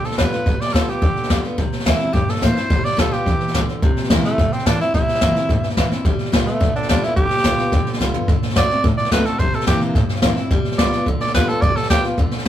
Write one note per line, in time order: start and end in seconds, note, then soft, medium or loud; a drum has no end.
0.00 0.43 D3 medium
0.04 0.18 A4 medium
0.04 muted upright bass stroke medium
0.04 snare soft
0.11 snare soft
0.18 0.28 E2 medium
0.18 0.32 G3 medium
0.18 0.32 B3 medium
0.18 0.31 F4 medium
0.18 0.63 B4 medium
0.18 kick medium
0.18 snare loud
0.18 hi-hat pedal medium
0.32 0.47 B3 soft
0.32 0.46 F4 medium
0.32 muted upright bass stroke medium
0.32 snare soft
0.46 0.55 G1 loud
0.46 0.73 G3 medium
0.46 kick loud
0.46 snare soft
0.61 0.75 D5 medium
0.61 muted upright bass stroke medium
0.61 snare soft
0.68 snare soft
0.74 0.84 D2 medium
0.74 0.87 G3 medium
0.74 0.88 B3 medium
0.74 0.88 F4 medium
0.74 0.91 A4 medium
0.74 kick loud
0.74 snare loud
0.74 hi-hat pedal medium
0.88 1.03 B3 soft
0.88 1.02 F4 medium
0.88 1.43 G4 medium
0.88 muted upright bass stroke medium
0.88 snare soft
1.02 1.11 E2 medium
1.02 1.55 D3 medium
1.02 kick loud
1.02 snare soft
1.16 muted upright bass stroke medium
1.16 snare soft
1.23 snare soft
1.30 1.39 F2 medium
1.30 1.44 G3 medium
1.30 1.44 B3 medium
1.30 1.43 F4 medium
1.30 kick medium
1.30 snare loud
1.30 hi-hat pedal medium
1.44 1.58 B3 soft
1.44 1.58 F4 medium
1.44 muted upright bass stroke medium
1.44 snare soft
1.58 1.67 C2 loud
1.58 2.11 C3 medium
1.58 kick loud
1.58 snare soft
1.72 muted upright bass stroke medium
1.72 snare soft
1.80 snare soft
1.85 1.96 E2 medium
1.85 1.99 E3 medium
1.85 2.00 A#3 medium
1.85 2.00 C4 medium
1.85 1.98 E4 loud
1.85 2.15 E4 medium
1.85 kick medium
1.85 snare loud
1.85 hi-hat pedal medium
2.00 2.15 C4 soft
2.00 2.13 E4 medium
2.00 muted upright bass stroke medium
2.00 snare soft
2.13 2.67 G2 medium
2.13 2.24 G2 loud
2.13 2.31 G4 medium
2.13 kick loud
2.13 snare soft
2.28 2.46 A4 medium
2.28 muted upright bass stroke medium
2.28 snare soft
2.36 snare soft
2.42 2.52 A2 medium
2.42 2.55 E3 medium
2.42 2.56 A#3 medium
2.42 2.56 C4 medium
2.42 2.54 E4 medium
2.42 2.86 C5 medium
2.42 kick medium
2.42 snare loud
2.42 hi-hat pedal medium
2.55 2.70 C4 soft
2.55 2.69 E4 medium
2.55 muted upright bass stroke medium
2.55 snare soft
2.70 2.80 G1 loud
2.70 2.96 G3 medium
2.70 kick loud
2.70 snare soft
2.84 3.01 D5 medium
2.84 muted upright bass stroke medium
2.84 snare soft
2.92 snare soft
2.97 3.08 D2 medium
2.97 3.11 G3 medium
2.97 3.12 B3 medium
2.97 3.10 F4 medium
2.97 3.14 A4 medium
2.97 kick loud
2.97 snare loud
2.97 hi-hat pedal loud
3.11 3.26 B3 soft
3.11 3.25 F4 medium
3.11 3.67 G4 medium
3.11 muted upright bass stroke medium
3.11 snare soft
3.26 3.36 E2 medium
3.26 3.53 E3 medium
3.26 kick loud
3.26 snare soft
3.40 muted upright bass stroke medium
3.40 snare soft
3.48 snare soft
3.54 3.63 B1 medium
3.54 3.81 D3 medium
3.54 kick medium
3.54 snare loud
3.54 hi-hat pedal medium
3.68 muted upright bass stroke medium
3.68 snare soft
3.82 3.92 C2 medium
3.82 4.36 C3 medium
3.82 kick loud
3.82 snare soft
3.97 muted upright bass stroke medium
3.97 snare soft
4.04 snare soft
4.10 4.20 E2 medium
4.10 4.24 E3 medium
4.10 4.24 A#3 medium
4.10 4.24 C4 medium
4.10 4.24 E4 loud
4.10 kick medium
4.10 snare loud
4.10 hi-hat pedal loud
4.24 4.54 A3 medium
4.24 4.39 C4 soft
4.24 4.38 E4 medium
4.24 muted upright bass stroke medium
4.24 snare soft
4.38 4.48 G2 medium
4.38 4.92 G2 medium
4.38 kick loud
4.38 snare soft
4.52 4.68 C4 medium
4.52 muted upright bass stroke medium
4.52 snare soft
4.59 snare soft
4.66 4.75 A2 medium
4.66 4.79 E3 medium
4.66 4.80 A#3 medium
4.66 4.80 C4 medium
4.66 4.80 D4 loud
4.66 4.80 E4 medium
4.66 kick medium
4.66 snare loud
4.66 hi-hat pedal medium
4.79 4.95 C4 soft
4.79 4.94 E4 loud
4.79 4.94 E4 medium
4.79 muted upright bass stroke medium
4.79 snare soft
4.94 5.03 C2 medium
4.94 5.47 C3 medium
4.94 5.75 E4 loud
4.94 kick loud
4.94 snare soft
5.08 muted upright bass stroke medium
5.08 snare soft
5.15 snare soft
5.21 5.31 G2 medium
5.21 5.35 E3 medium
5.21 5.36 A#3 medium
5.21 5.36 C4 medium
5.21 5.35 E4 medium
5.21 kick loud
5.21 snare loud
5.21 hi-hat pedal medium
5.35 5.50 C4 soft
5.35 5.49 E4 medium
5.35 muted upright bass stroke medium
5.35 snare soft
5.49 6.03 G2 medium
5.49 5.59 A2 medium
5.49 kick loud
5.49 snare soft
5.62 muted upright bass stroke medium
5.62 snare soft
5.70 snare soft
5.77 5.87 A#2 medium
5.77 5.91 E3 medium
5.77 5.91 A#3 medium
5.77 5.91 C4 medium
5.77 5.90 E4 medium
5.77 kick medium
5.77 snare loud
5.77 hi-hat pedal medium
5.91 6.06 C4 soft
5.91 6.05 E4 soft
5.91 muted upright bass stroke medium
5.91 snare soft
6.05 6.14 G1 medium
6.05 6.31 G3 medium
6.05 kick loud
6.05 snare soft
6.18 muted upright bass stroke medium
6.18 snare soft
6.26 snare soft
6.32 6.42 B1 medium
6.32 6.46 G3 medium
6.32 6.47 B3 loud
6.32 6.46 F4 loud
6.32 kick loud
6.32 snare loud
6.32 hi-hat pedal loud
6.46 6.74 A3 medium
6.46 6.61 B3 soft
6.46 6.61 F4 medium
6.46 muted upright bass stroke medium
6.46 snare soft
6.61 6.70 D2 loud
6.61 7.14 D3 medium
6.61 kick loud
6.61 snare soft
6.74 6.89 D4 medium
6.74 muted upright bass stroke medium
6.74 snare soft
6.82 snare soft
6.89 6.98 E2 medium
6.89 7.03 G3 medium
6.89 7.03 B3 loud
6.89 7.05 D4 medium
6.89 7.01 F4 loud
6.89 kick medium
6.89 snare loud
6.89 hi-hat pedal medium
7.02 7.17 B3 soft
7.02 7.16 E4 medium
7.02 7.16 F4 medium
7.02 muted upright bass stroke medium
7.02 snare soft
7.16 7.26 G1 loud
7.16 7.43 G3 medium
7.16 7.98 G4 loud
7.16 kick loud
7.16 snare soft
7.30 muted upright bass stroke medium
7.30 snare soft
7.37 snare soft
7.44 7.54 D2 medium
7.44 7.58 G3 medium
7.44 7.59 B3 medium
7.44 7.57 F4 medium
7.44 kick loud
7.44 snare loud
7.44 hi-hat pedal loud
7.58 7.73 B3 soft
7.58 7.72 F4 medium
7.58 muted upright bass stroke medium
7.58 snare soft
7.72 7.82 E2 loud
7.72 8.26 D3 medium
7.72 kick loud
7.72 snare soft
7.86 muted upright bass stroke medium
7.86 snare soft
7.93 snare soft
8.00 8.10 C#2 medium
8.00 8.14 G3 medium
8.00 8.14 B3 medium
8.00 8.13 F4 medium
8.00 kick medium
8.00 snare medium
8.00 hi-hat pedal medium
8.14 8.29 B3 soft
8.14 8.28 F4 soft
8.14 muted upright bass stroke medium
8.14 floor tom medium
8.28 8.38 D2 medium
8.28 8.54 D3 medium
8.28 kick loud
8.28 snare soft
8.43 muted upright bass stroke medium
8.43 snare soft
8.49 snare soft
8.56 8.66 F#2 medium
8.56 8.69 D3 medium
8.56 8.70 A3 medium
8.56 8.70 C4 loud
8.56 8.69 F#4 medium
8.56 8.84 D5 loud
8.56 kick loud
8.56 snare loud
8.56 hi-hat pedal loud
8.70 8.85 C4 soft
8.70 8.83 F#4 medium
8.70 muted upright bass stroke medium
8.70 snare soft
8.84 9.37 A2 medium
8.84 8.93 A2 medium
8.84 kick loud
8.84 snare soft
8.97 9.11 D5 medium
8.97 muted upright bass stroke medium
8.97 snare soft
9.05 snare soft
9.11 9.21 B1 medium
9.11 9.25 D3 medium
9.11 9.26 A3 medium
9.11 9.26 C4 medium
9.11 9.24 F#4 loud
9.11 9.28 B4 medium
9.11 kick medium
9.11 snare loud
9.11 hi-hat pedal medium
9.25 9.40 C4 soft
9.25 9.39 F#4 medium
9.25 9.41 A4 medium
9.25 muted upright bass stroke medium
9.25 snare soft
9.39 9.49 C2 loud
9.39 9.93 C3 medium
9.39 9.57 C5 medium
9.39 kick loud
9.39 snare soft
9.54 9.67 A4 medium
9.54 muted upright bass stroke medium
9.54 snare soft
9.61 snare soft
9.67 9.77 G2 medium
9.67 9.94 E3 medium
9.67 9.94 A#3 medium
9.67 9.95 C4 medium
9.67 9.95 E4 medium
9.67 9.81 G4 loud
9.67 kick loud
9.67 snare loud
9.67 hi-hat pedal loud
9.81 muted upright bass stroke medium
9.81 snare soft
9.95 10.49 G2 medium
9.95 10.04 A2 loud
9.95 kick loud
9.95 snare soft
10.09 muted upright bass stroke medium
10.09 snare soft
10.16 snare soft
10.22 10.33 A#2 loud
10.22 10.37 E3 medium
10.22 10.37 A#3 medium
10.22 10.37 C4 medium
10.22 10.35 E4 loud
10.22 kick medium
10.22 snare loud
10.22 hi-hat pedal medium
10.36 10.51 C4 soft
10.36 10.50 E4 medium
10.36 muted upright bass stroke medium
10.36 snare soft
10.50 10.60 G1 medium
10.50 10.78 G3 medium
10.50 kick loud
10.50 snare soft
10.65 muted upright bass stroke medium
10.65 snare soft
10.71 snare soft
10.78 10.88 B1 loud
10.78 10.92 G3 medium
10.78 10.93 B3 loud
10.78 10.93 F4 medium
10.78 11.06 D5 medium
10.78 kick loud
10.78 snare loud
10.78 hi-hat pedal loud
10.92 11.08 B3 medium
10.92 11.07 F4 medium
10.92 muted upright bass stroke medium
10.92 snare soft
11.06 11.16 D2 loud
11.06 11.60 D3 medium
11.06 kick loud
11.06 snare soft
11.20 11.34 D5 medium
11.20 muted upright bass stroke medium
11.20 snare soft
11.27 snare soft
11.34 11.44 E2 medium
11.34 11.48 G3 medium
11.34 11.49 B3 medium
11.34 11.47 F4 medium
11.34 11.50 B4 loud
11.34 kick medium
11.34 snare loud
11.34 hi-hat pedal medium
11.48 11.63 B3 soft
11.48 11.62 F4 soft
11.48 11.63 A4 loud
11.48 muted upright bass stroke medium
11.48 snare soft
11.62 11.72 G1 loud
11.62 11.89 G3 medium
11.62 11.78 D5 medium
11.62 kick loud
11.62 snare soft
11.76 11.90 A4 medium
11.76 muted upright bass stroke medium
11.76 snare soft
11.83 snare soft
11.90 12.00 D2 medium
11.90 12.04 G3 medium
11.90 12.04 B3 medium
11.90 12.03 F4 loud
11.90 12.04 G4 loud
11.90 kick loud
11.90 snare loud
11.90 hi-hat pedal loud
12.04 12.19 B3 medium
12.04 12.18 F4 medium
12.04 muted upright bass stroke medium
12.04 snare soft
12.17 12.27 E2 loud
12.17 12.48 D3 medium
12.17 kick loud
12.17 snare soft
12.31 muted upright bass stroke medium
12.31 snare soft
12.38 snare soft